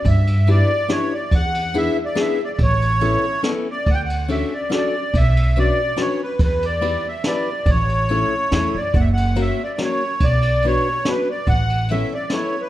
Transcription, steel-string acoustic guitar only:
X:1
M:3/4
L:1/8
Q:"Swing" 1/4=142
K:Amix
V:1 name="Steel-string acoustic guitar"
z2 [B,DEG] z [B,DEG] z | z2 [B,DE^G] z [B,DEG] z | z2 [B,CEA] z [B,CEA] z | z2 [CDFA] z [CDFA] z |
z2 [CDFB] z [CDFB] z | z2 [B,EGB] z [B,EGB] z | z2 [A,CEA] z [A,CEA] z | z2 [^A,CF^A] z [A,CFA] z |
z2 [B,DFB] z [B,DFB] z | z2 [B,CEA] z [B,CEA] z |]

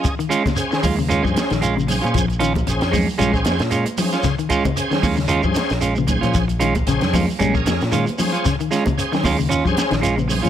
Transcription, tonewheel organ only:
X:1
M:4/4
L:1/16
Q:"Swing 16ths" 1/4=114
K:Bbdor
V:1 name="Tonewheel organ"
[DAe] z3 [DAc]2 z3 [DAc]2 z3 [DAc]2- | [DAc] z3 [DAc]2 z3 [DAc]2 z3 [DAc]2- | [DAc] z3 [DAc]2 z3 [DAc]2 z3 [DAc]2- | [DAc] z3 [DAc]2 z3 [DAB]2 z3 [DAc]2- |
[DAc] z3 [DAc]2 z3 [DAc]2 z3 [DAc]2 |]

